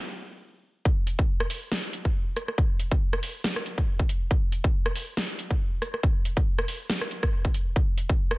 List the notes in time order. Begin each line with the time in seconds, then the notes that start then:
0.85 kick
1.07 closed hi-hat
1.19 kick
1.40 cross-stick
1.50 open hi-hat
1.72 snare
1.84 closed hi-hat
1.93 closed hi-hat
2.05 kick
2.37 cross-stick, closed hi-hat
2.48 cross-stick
2.58 kick
2.80 closed hi-hat
2.92 kick
3.13 cross-stick
3.23 open hi-hat
3.44 snare
3.56 cross-stick, closed hi-hat
3.66 closed hi-hat
3.78 kick
3.99 kick
4.09 closed hi-hat
4.31 kick
4.52 closed hi-hat
4.64 kick
4.86 cross-stick
4.96 open hi-hat
5.17 snare
5.29 closed hi-hat
5.39 closed hi-hat
5.51 kick
5.82 cross-stick, closed hi-hat
5.94 cross-stick
6.03 kick
6.25 closed hi-hat
6.37 kick
6.59 cross-stick
6.68 open hi-hat
6.90 snare
7.01 cross-stick, closed hi-hat
7.11 closed hi-hat
7.23 kick, cross-stick
7.45 kick
7.54 closed hi-hat
7.76 kick
7.98 closed hi-hat
8.09 kick
8.31 cross-stick